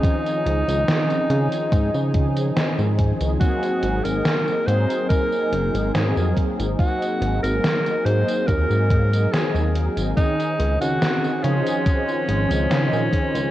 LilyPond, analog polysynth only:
\new Staff \with { instrumentName = "Analog polysynth" } { \time 4/4 \key des \major \tempo 4 = 71 <f c' des' ees' aes'>4. <f c' des' ees' aes'>2~ <f c' des' ees' aes'>8 | <ges bes c' ees' aes'>4. <ges bes c' ees' aes'>4. <ges bes c' ees' aes'>4 | <ges bes c' ees' aes'>4. <ges bes c' ees' aes'>2~ <ges bes c' ees' aes'>8 | <ees c' des' ees' aes'>4. <f des' ees' aes' c''>4. <f des' ees' aes' c''>4 | }